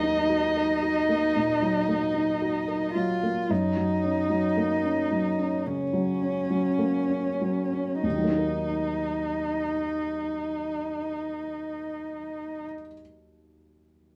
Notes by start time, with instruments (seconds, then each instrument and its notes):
Already playing: felt piano D#2 F#3 A#3, cello D#4, violin D#5
0.03 felt piano D#4
0.30 felt piano F#4
0.57 felt piano A#4
0.83 felt piano F#4
1.09 felt piano A#3
1.36 felt piano A#2
1.62 felt piano F#3
1.88 felt piano A#3
2.14 felt piano D#4
2.42 felt piano F#4
2.68 felt piano A#4
2.94 felt piano F#3, cello F4
3.23 felt piano A#3
3.50 felt piano F#2, cello D#4
3.77 felt piano F#3
4.03 felt piano C#4
4.30 felt piano F#3
4.57 felt piano A#3
4.84 felt piano C#4
5.11 felt piano F#3
5.38 felt piano C#4
5.66 felt piano C#3, cello C#4
5.93 felt piano F#3
6.21 felt piano C#4
6.50 felt piano F#3
6.79 felt piano A#3
7.09 felt piano C#4
7.41 felt piano F#3
7.73 felt piano C#4
8.03 felt piano D#2, cello D#4
8.10 felt piano D#3
8.17 felt piano F#3
8.24 felt piano A#3
8.31 felt piano D#4
8.38 felt piano A#4